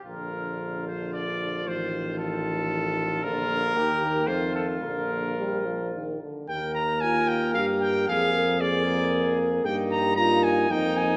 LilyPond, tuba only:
\new Staff \with { instrumentName = "Tuba" } { \clef bass \time 3/4 \key bes \major \tempo 4 = 114 bes,,2. | a,,2. | bes,,4 ees,4 f,4 | bes,,2~ bes,,8 r8 |
\key ees \major ees,2 g,4 | f,2. | g,2 f,4 | }